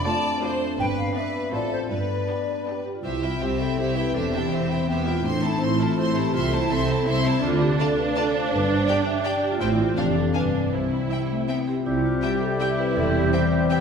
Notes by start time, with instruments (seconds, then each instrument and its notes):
Already playing: harp F2 A3 A4, french horn section A3 D4
0.04 viola section A3 F4, harp F4, violin section D5, flute A5
0.24 harp A4
0.41 viola section A3 F4, violin section C5 D5, harp D5
0.61 harp A3
0.77 double bass section G1, cello section G2, harp G2, french horn section B3, violin section B4, flute G5
0.97 harp B3, flute F5
1.15 viola section B3 D4, harp D4, violin section B4 D5, flute E5
1.34 harp B4
1.52 double bass section A1, cello section A2, harp A2, french horn section C4 F4, viola section C4 F4, violin section A4 C5, flute D5
1.71 harp F4 C5, flute C5
1.90 double bass section G1, cello section G2, harp G2, french horn section B3 D4, violin section B4, flute D5
2.10 harp B3
2.28 viola section B3 D4, harp D4, violin section G4
2.48 harp B4
2.66 viola section B3 D4, violin section G4, harp G4
2.85 harp B3, vibraphone G4
2.95 vibraphone F4
3.03 cello section C2, double bass section C2, harp C3, vibraphone E4, violin section G4 C5 E5
3.14 harp G3
3.22 harp C4, violin section E4 E5 G5, vibraphone F4
3.32 harp E4
3.40 cello section C2, double bass section C2, viola section C4, violin section G4 C5 E5, vibraphone G4, harp G4
3.51 harp C5
3.59 violin section E4 E5 G5, vibraphone A4, harp E5
3.70 harp G5
3.77 double bass section C2, cello section C2, viola section E4, vibraphone G4, violin section G4 C5 E5, harp E5
3.88 harp G4
3.95 violin section E4 E5 G5, harp E4, vibraphone B4
4.06 harp C4
4.14 double bass section E1, cello section E2, harp E3, viola section D4, violin section G4 C5 E5, vibraphone A4
4.24 harp C4
4.32 harp E4, violin section E4 E5 G5, vibraphone G4
4.42 harp G4
4.51 double bass section E1, cello section E2, viola section C4, violin section G4 C5 E5, harp C5, vibraphone C5
4.61 harp E5
4.69 violin section E4 E5 G5, harp G5
4.79 harp C6
4.88 double bass section E1, cello section E2, viola section B3, violin section G4 C5 E5, harp G5
4.97 harp C5
5.05 violin section E4 E5 G5, vibraphone F4, harp G4
5.16 harp E4, vibraphone E4
5.23 double bass section A1, cello section A2, harp A2, viola section A3, violin section C4 C5 C6, vibraphone D4
5.34 harp E3
5.42 harp C4, vibraphone D#4, violin section E4 A4 A5
5.53 harp E4
5.60 double bass section A1, cello section A2, violin section C4 C5 C6, vibraphone E4, harp A4
5.71 harp C5
5.78 violin section E4 A4 A5, vibraphone F4, harp E5
5.88 harp A5
5.97 double bass section A1, cello section A2, violin section C4 C5 C6, vibraphone E4, harp E5
6.07 harp A4
6.15 violin section E4 A4 A5, harp E4, vibraphone G4
6.26 harp C4
6.33 double bass section C2, cello section C3, harp C3, viola section A3, violin section C4 E5 C6, vibraphone F4
6.44 harp C4
6.52 harp A3, vibraphone E4, violin section E4 C5 A5
6.61 harp E4
6.70 double bass section C2, cello section C3, viola section C4, violin section C4 E5 C6, harp A4, vibraphone A4
6.80 harp E4
6.88 violin section E4 C5 A5, harp E5
6.98 harp A5
7.06 double bass section C2, cello section C3, violin section C4 E5 C6, viola section E4, harp E5
7.16 harp A4
7.25 violin section E4 C5 A5, harp E4
7.34 harp A3
7.43 double bass section D2, cello section D3, harp D3, viola section D4, vibraphone F4
7.52 harp D4
7.61 harp A3, vibraphone G4
7.71 harp F4
7.79 violin section F4 D5 A5, vibraphone A4, harp D5
7.90 harp A4
7.98 vibraphone B4, harp F5
8.08 harp D6
8.16 violin section F4 D5 A5, vibraphone A4, harp F5
8.25 harp D5
8.34 harp F4, vibraphone C5
8.43 harp A3
8.52 double bass section G1, harp G2, cello section G2, vibraphone B4
8.61 harp D3
8.69 harp G3, vibraphone C5
8.79 harp G4
8.87 violin section G4 D5 G5, vibraphone D5, harp D5
8.97 harp G4
9.06 vibraphone E5, harp G5
9.15 harp D6
9.24 violin section G4 D5 G5, vibraphone D5, harp G5
9.34 harp D5
9.42 vibraphone G4, harp G4
9.51 harp G3, vibraphone F4
9.60 double bass section A1, harp A2, cello section A2, viola section C4, vibraphone E4, violin section E4 C5 G5
9.70 harp E3
9.78 harp C4, vibraphone F4
9.87 harp G4
9.97 double bass section F1, cello section F2, harp F2, violin section D4 C5 F5, viola section D4, vibraphone G4
10.06 harp C3
10.14 harp D4, vibraphone A4
10.24 harp F4
10.33 double bass section G1, harp G2, cello section G2, violin section D4 F5 G#5, viola section D4, vibraphone B4
10.43 harp D3
10.53 harp D4
10.62 harp F4
10.72 double bass section C2, cello section C3, harp C3, viola section E4, vibraphone C5
10.82 harp G3
10.92 harp C4
11.01 harp E4
11.10 cello section G3, violin section C4 E5 G5, harp G4
11.20 harp C5
11.29 cello section A3, harp E5
11.39 harp G5
11.48 cello section B3, violin section C4 E5 G5, harp E5
11.59 harp G4
11.67 cello section C4, harp E4, vibraphone G4
11.77 harp C4, vibraphone F4
11.85 double bass section C2, cello section C3, harp C3, french horn section G3 C4, bassoon G3, vibraphone E4, oboe G4, flute E5
11.96 harp G3
12.05 harp C4, vibraphone F4
12.15 harp E4
12.23 viola section G3, violin section C4 E5 G5, vibraphone G4, harp G4
12.32 harp C5
12.40 vibraphone A4, harp E5
12.51 harp G5
12.59 violin section C4 E5 G5, viola section E4, vibraphone G4, harp E5
12.69 harp G4
12.78 harp E4, vibraphone B4
12.88 harp C4
12.96 double bass section E1, cello section E2, harp E3, vibraphone A4
13.06 harp C4
13.14 harp E4, vibraphone G4
13.24 harp G4
13.32 viola section C4, violin section C4 E5 G5, harp C5, vibraphone C5
13.42 harp E5
13.51 harp G5
13.60 harp C6
13.69 viola section B3, violin section C4 E5 G5, harp G5